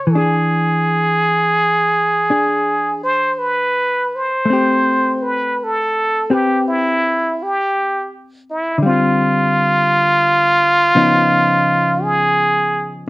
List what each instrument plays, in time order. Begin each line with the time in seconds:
Already playing: muted trumpet C#5
0.07 hollow-body jazz guitar E3
0.12 hollow-body jazz guitar D4, muted trumpet G#4
0.17 hollow-body jazz guitar G#4
2.30 hollow-body jazz guitar D4 G#4
3.03 muted trumpet C5
3.38 muted trumpet B4
4.15 muted trumpet C5
4.45 hollow-body jazz guitar A3
4.50 hollow-body jazz guitar C4 G4
5.22 muted trumpet B4
5.64 muted trumpet A4
6.30 hollow-body jazz guitar C4 G4 B4, muted trumpet G4
6.68 muted trumpet E4
7.43 muted trumpet G4
8.50 muted trumpet E4
8.78 hollow-body jazz guitar D3
8.83 hollow-body jazz guitar G3 C4, muted trumpet F4
8.89 hollow-body jazz guitar F4
10.95 hollow-body jazz guitar C#3 F3 B3 D#4
12.03 muted trumpet G#4